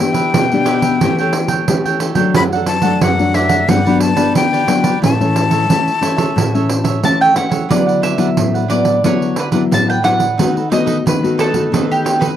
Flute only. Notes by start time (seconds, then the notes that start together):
Already playing: G5
2.36 B5
2.67 A5
3.02 F#5
3.35 E5
3.69 F#5
4.02 A5
4.36 G5
5.04 A5